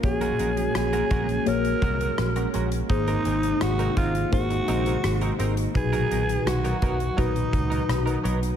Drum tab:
HH |xxxxxxxxxxxxxxxx|xxxxxxxxxxxxxxxx|xxxxxxxxxxxxxxxx|
SD |----r-------r---|----r-------r---|----r-------r---|
BD |o-----o---o-----|o-----o-o-------|o-----o-o-o-----|